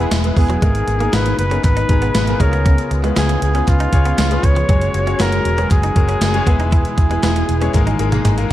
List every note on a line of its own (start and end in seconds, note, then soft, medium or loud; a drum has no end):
0.00 0.64 E3 medium
0.00 0.24 G#3 medium
0.00 0.24 B3 medium
0.00 0.24 E4 medium
0.00 0.25 G#4 medium
0.00 0.25 B4 medium
0.11 0.30 E1 loud
0.11 0.21 G#3 medium
0.11 snare loud
0.11 clap medium
0.11 closed hi-hat loud
0.11 tambourine medium
0.24 0.55 G#3 medium
0.24 0.56 B3 medium
0.24 0.56 E4 medium
0.24 0.56 G#4 medium
0.24 0.56 B4 medium
0.24 closed hi-hat medium
0.37 0.55 E1 medium
0.37 0.58 B3 loud
0.37 0.58 E4 medium
0.37 0.58 G#4 loud
0.37 1.15 G#4 loud
0.37 muted clean electric guitar stroke soft
0.37 kick medium
0.37 open hi-hat medium
0.50 0.59 F#3 medium
0.50 closed hi-hat soft
0.62 0.81 G#1 loud
0.62 1.35 G#2 medium
0.62 2.38 B2 medium
0.62 4.65 G#3 medium
0.62 0.72 G#3 medium
0.62 0.94 A#3 medium
0.62 0.94 B3 medium
0.62 2.38 D#4 medium
0.62 0.94 D#4 medium
0.62 0.94 G#4 medium
0.62 0.94 A#4 medium
0.62 kick loud
0.62 closed hi-hat medium
0.75 closed hi-hat medium
0.88 1.06 G#1 medium
0.88 muted clean electric guitar stroke soft
0.88 closed hi-hat medium
1.00 1.42 A#3 medium
1.00 1.10 A#3 medium
1.00 1.42 B3 medium
1.00 1.42 D#4 medium
1.00 1.43 G#4 medium
1.00 1.43 A#4 medium
1.00 closed hi-hat soft
1.13 1.31 G#1 loud
1.13 1.23 B3 medium
1.13 1.38 B4 loud
1.13 snare loud
1.13 clap medium
1.13 closed hi-hat medium
1.13 tambourine medium
1.26 muted clean electric guitar stroke soft
1.26 closed hi-hat medium
1.39 1.57 F#1 medium
1.39 1.62 B4 loud
1.39 closed hi-hat medium
1.51 1.82 A#3 medium
1.51 1.83 B3 medium
1.51 1.61 C#4 medium
1.51 1.83 D#4 medium
1.51 1.83 G#4 medium
1.51 1.83 A#4 medium
1.51 closed hi-hat soft
1.64 1.82 G#1 loud
1.64 2.42 B4 loud
1.64 kick loud
1.64 clap medium
1.64 closed hi-hat medium
1.77 1.87 D#4 medium
1.77 closed hi-hat medium
1.89 2.08 G#1 loud
1.89 2.21 G#3 medium
1.89 2.21 B3 medium
1.89 2.21 D#4 medium
1.89 2.21 G#4 medium
1.89 2.21 A#5 medium
1.89 muted clean electric guitar stroke soft
1.89 kick medium
1.89 closed hi-hat medium
2.02 2.12 B3 medium
2.02 closed hi-hat medium
2.15 2.33 G#1 loud
2.15 muted clean electric guitar stroke soft
2.15 snare loud
2.15 clap medium
2.15 closed hi-hat loud
2.15 tambourine medium
2.27 2.40 A#3 medium
2.27 2.38 B3 medium
2.27 2.40 D#4 medium
2.27 2.39 G#4 medium
2.27 2.41 A#4 medium
2.27 closed hi-hat medium
2.40 2.77 C#2 loud
2.40 6.43 C#3 medium
2.40 3.13 C#3 medium
2.40 2.50 G#3 medium
2.40 2.93 B3 medium
2.40 4.67 B3 medium
2.40 2.93 C#4 medium
2.40 4.67 F4 medium
2.40 2.93 F4 medium
2.40 2.93 G#4 medium
2.40 2.91 A#4 loud
2.40 2.93 C#5 medium
2.40 kick medium
2.40 closed hi-hat medium
2.53 2.63 B3 medium
2.53 closed hi-hat soft
2.66 2.76 C#4 medium
2.66 kick loud
2.66 closed hi-hat medium
2.78 closed hi-hat medium
2.91 3.09 C#2 medium
2.91 muted clean electric guitar stroke soft
2.91 closed hi-hat medium
3.03 3.14 G#3 medium
3.03 3.46 B3 medium
3.03 3.46 C#4 medium
3.03 3.10 E4 medium
3.03 3.46 G#4 medium
3.03 3.46 B4 medium
3.03 closed hi-hat soft
3.10 3.49 F4 medium
3.16 3.35 C#2 loud
3.16 3.26 B3 medium
3.16 3.41 G#4 loud
3.16 snare loud
3.16 clap medium
3.16 closed hi-hat medium
3.16 tambourine medium
3.29 muted clean electric guitar stroke soft
3.29 closed hi-hat medium
3.42 3.60 C#2 loud
3.42 3.70 G#4 medium
3.42 closed hi-hat medium
3.54 3.86 B3 medium
3.54 3.86 C#4 medium
3.54 3.65 C#4 medium
3.54 3.86 F4 medium
3.54 3.86 G#4 medium
3.54 3.86 B4 medium
3.54 closed hi-hat medium
3.68 3.86 C#2 loud
3.68 4.46 F4 loud
3.68 kick medium
3.68 clap medium
3.68 closed hi-hat medium
3.80 3.90 D#4 medium
3.80 closed hi-hat medium
3.92 4.11 C#2 loud
3.92 4.24 B3 medium
3.92 4.24 C#4 medium
3.92 4.24 F4 medium
3.92 4.25 G#4 medium
3.92 4.25 C#5 medium
3.92 muted clean electric guitar stroke soft
3.92 kick loud
3.92 closed hi-hat medium
4.05 4.15 B3 medium
4.05 closed hi-hat medium
4.18 4.36 C#2 loud
4.18 4.28 G#3 medium
4.18 snare loud
4.18 clap medium
4.18 closed hi-hat loud
4.18 tambourine medium
4.30 4.62 B3 medium
4.30 4.62 C#4 medium
4.30 4.62 F4 medium
4.30 4.62 G#4 medium
4.30 4.63 B4 medium
4.30 closed hi-hat medium
4.43 4.62 C#2 medium
4.43 5.22 C#5 loud
4.43 muted clean electric guitar stroke soft
4.43 kick medium
4.43 closed hi-hat medium
4.56 4.66 F3 medium
4.56 closed hi-hat soft
4.68 4.87 F#1 loud
4.68 6.45 F#3 medium
4.68 4.79 F#3 medium
4.68 5.00 G#3 medium
4.68 8.53 G#3 medium
4.68 5.00 C#4 medium
4.68 6.45 F#4 medium
4.68 5.00 F#4 medium
4.68 5.01 G#4 medium
4.68 5.01 C#5 medium
4.68 kick loud
4.68 closed hi-hat medium
4.81 closed hi-hat medium
4.94 5.13 F#1 medium
4.94 muted clean electric guitar stroke soft
4.94 closed hi-hat medium
5.06 5.49 G#3 medium
5.06 5.17 G#3 medium
5.06 5.49 C#4 medium
5.06 5.49 F#4 medium
5.06 5.49 G#4 medium
5.06 5.49 C#5 medium
5.06 closed hi-hat medium
5.19 5.38 F#1 loud
5.19 5.30 B3 medium
5.19 5.71 A#4 loud
5.19 snare loud
5.19 clap medium
5.19 closed hi-hat medium
5.19 tambourine medium
5.32 muted clean electric guitar stroke soft
5.32 closed hi-hat medium
5.45 5.63 E1 loud
5.45 closed hi-hat medium
5.57 5.89 G#3 medium
5.57 5.89 C#4 medium
5.57 5.68 C#4 medium
5.57 5.89 F#4 medium
5.57 5.90 G#4 medium
5.57 5.90 B4 medium
5.57 closed hi-hat medium
5.71 5.89 F#1 loud
5.71 6.69 G#4 loud
5.71 kick loud
5.71 clap medium
5.71 closed hi-hat loud
5.83 5.93 D#4 medium
5.83 closed hi-hat medium
5.95 6.14 F#1 loud
5.95 6.27 G#3 medium
5.95 6.27 C#4 medium
5.95 6.28 F#4 medium
5.95 6.28 G#4 medium
5.95 6.28 A#4 medium
5.95 muted clean electric guitar stroke soft
5.95 kick medium
5.95 closed hi-hat medium
6.09 6.19 C#4 medium
6.09 closed hi-hat medium
6.21 6.40 F#1 loud
6.21 muted clean electric guitar stroke soft
6.21 snare loud
6.21 clap medium
6.21 closed hi-hat loud
6.21 tambourine medium
6.33 6.45 G#3 medium
6.33 6.47 C#4 medium
6.33 6.47 F#4 medium
6.33 6.46 G#4 medium
6.33 6.47 C#5 loud
6.33 closed hi-hat medium
6.47 6.83 E1 medium
6.47 7.73 B2 medium
6.47 7.19 E3 medium
6.47 7.73 E3 medium
6.47 6.99 G#3 loud
6.47 6.99 B3 medium
6.47 6.57 B3 medium
6.47 7.73 E4 medium
6.47 7.00 E4 medium
6.47 7.00 G#4 medium
6.47 7.00 B4 loud
6.47 kick medium
6.47 closed hi-hat medium
6.60 6.70 D#4 medium
6.60 closed hi-hat soft
6.72 6.82 E4 medium
6.72 8.21 G#4 medium
6.72 kick loud
6.72 closed hi-hat medium
6.85 closed hi-hat medium
6.98 7.16 E1 medium
6.98 muted clean electric guitar stroke soft
6.98 kick loud
6.98 closed hi-hat medium
7.10 7.52 G#3 medium
7.10 7.21 G#3 medium
7.10 7.52 B3 medium
7.10 7.53 E4 medium
7.10 7.53 G#4 medium
7.10 7.53 B4 medium
7.10 closed hi-hat soft
7.23 7.41 E1 loud
7.23 7.33 B3 medium
7.23 snare loud
7.23 clap medium
7.23 closed hi-hat medium
7.23 tambourine medium
7.36 muted clean electric guitar stroke soft
7.36 closed hi-hat medium
7.49 7.67 E1 medium
7.49 closed hi-hat medium
7.61 7.72 G#3 medium
7.61 7.74 B3 medium
7.61 7.71 C#4 medium
7.61 7.74 E4 medium
7.61 7.73 G#4 medium
7.61 7.74 C#5 medium
7.61 closed hi-hat medium
7.73 7.93 G#1 loud
7.73 8.46 G#2 medium
7.73 8.53 A#2 medium
7.73 8.53 D#3 medium
7.73 7.95 G#3 loud
7.73 7.95 A#3 medium
7.73 7.95 D#4 medium
7.73 8.53 D#4 medium
7.73 7.95 G#4 medium
7.73 7.95 A#4 loud
7.73 kick medium
7.73 clap medium
7.73 closed hi-hat medium
7.73 high tom medium
7.87 7.97 D#4 medium
7.87 closed hi-hat medium
7.87 high tom medium
7.99 8.18 G#1 loud
7.99 8.31 G#3 medium
7.99 8.31 A#3 medium
7.99 8.31 D#4 medium
7.99 8.31 G#4 medium
7.99 8.31 A#4 loud
7.99 muted clean electric guitar stroke soft
7.99 closed hi-hat medium
8.12 8.23 A#3 medium
8.12 8.22 A#3 medium
8.12 8.23 D#4 medium
8.12 8.23 G#4 loud
8.12 closed hi-hat medium
8.12 mid tom medium
8.25 8.43 G#1 loud
8.25 8.35 G#3 medium
8.25 8.49 G#5 medium
8.25 clap medium
8.25 closed hi-hat loud
8.25 mid tom loud
8.37 8.53 G#3 medium
8.37 8.53 A#3 medium
8.37 8.53 D#4 medium
8.37 8.53 G#4 medium
8.37 8.53 A#4 medium
8.37 closed hi-hat medium